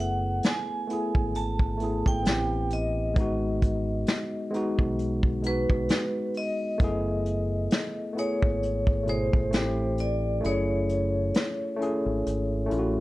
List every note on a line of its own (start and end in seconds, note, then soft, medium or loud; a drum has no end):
0.00 0.40 F#1 loud
0.00 0.66 A3 medium
0.00 0.67 B3 medium
0.00 0.68 E4 medium
0.00 0.69 G#4 medium
0.00 0.46 F#5 medium
0.43 1.38 G#5 loud
0.43 snare loud
0.43 closed hi-hat medium
0.87 1.65 A3 medium
0.87 1.66 B3 medium
0.87 1.67 E4 medium
0.87 closed hi-hat medium
0.93 1.68 G#4 medium
1.15 2.02 G#1 medium
1.15 kick medium
1.35 2.08 A5 loud
1.35 closed hi-hat medium
1.59 kick medium
1.78 2.24 A3 medium
1.78 2.21 B3 medium
1.78 closed hi-hat medium
1.82 2.25 E4 medium
1.82 2.27 G#4 medium
2.06 2.24 G#1 medium
2.06 2.74 G5 loud
2.06 kick medium
2.23 3.13 A1 loud
2.23 3.01 B3 medium
2.23 3.02 C4 medium
2.23 3.03 E4 medium
2.23 closed hi-hat medium
2.27 3.04 G4 medium
2.27 snare loud
2.70 4.50 D#5 medium
2.70 closed hi-hat medium
3.14 4.03 G#1 loud
3.14 4.31 G#3 medium
3.14 4.32 B3 medium
3.14 kick loud
3.14 closed hi-hat medium
3.18 4.33 D#4 medium
3.18 4.34 F#4 loud
3.62 kick medium
3.62 closed hi-hat medium
4.06 snare loud
4.06 closed hi-hat medium
4.50 5.29 G#3 loud
4.50 5.30 B3 medium
4.50 5.31 D#4 medium
4.50 closed hi-hat medium
4.56 5.31 F#4 loud
4.79 5.66 B1 medium
4.79 kick medium
4.99 closed hi-hat medium
5.23 kick medium
5.42 6.58 G#3 medium
5.42 6.59 B3 medium
5.42 6.60 D#4 medium
5.42 closed hi-hat medium
5.47 6.61 F#4 medium
5.47 6.32 B4 medium
5.70 5.88 B1 medium
5.70 kick medium
5.89 snare loud
5.89 closed hi-hat medium
6.34 8.14 D#5 loud
6.34 open hi-hat medium
6.78 7.67 F#1 loud
6.78 7.94 A3 loud
6.78 7.95 B3 medium
6.78 kick loud
6.78 closed hi-hat medium
6.82 7.96 E4 medium
6.82 7.97 G#4 loud
7.25 closed hi-hat medium
7.71 snare loud
7.71 closed hi-hat medium
8.13 8.92 A3 medium
8.13 8.93 B3 medium
8.17 8.94 E4 medium
8.17 8.95 G#4 loud
8.17 9.11 C#5 loud
8.17 closed hi-hat medium
8.42 9.29 G#1 medium
8.42 kick medium
8.63 closed hi-hat medium
8.87 kick medium
9.03 9.52 B2 medium
9.03 9.49 A3 medium
9.07 9.53 E4 medium
9.07 9.54 G#4 medium
9.07 10.02 C5 medium
9.07 closed hi-hat medium
9.33 9.52 G#1 medium
9.33 kick medium
9.51 10.40 A1 loud
9.51 10.29 A3 medium
9.51 10.30 C4 medium
9.51 snare loud
9.51 closed hi-hat medium
9.55 10.31 E4 medium
9.55 10.32 G4 medium
9.98 10.46 D5 medium
9.98 closed hi-hat medium
10.40 11.57 A3 medium
10.40 11.58 C#4 medium
10.40 11.59 E4 medium
10.40 closed hi-hat medium
10.44 11.31 F#1 loud
10.44 11.60 G#4 loud
10.44 13.00 C#5 medium
10.89 closed hi-hat medium
11.34 snare loud
11.34 closed hi-hat medium
11.77 12.55 A3 loud
11.77 12.56 C#4 medium
11.77 12.57 E4 medium
11.81 12.58 G#4 loud
11.81 closed hi-hat medium
12.06 12.24 G#1 medium
12.26 12.67 G#1 medium
12.26 closed hi-hat medium
12.66 13.00 A3 medium
12.66 13.00 C#4 medium
12.66 13.00 E4 medium
12.71 13.00 A1 loud
12.71 12.79 F4 medium
12.71 closed hi-hat medium
12.79 13.00 F#4 loud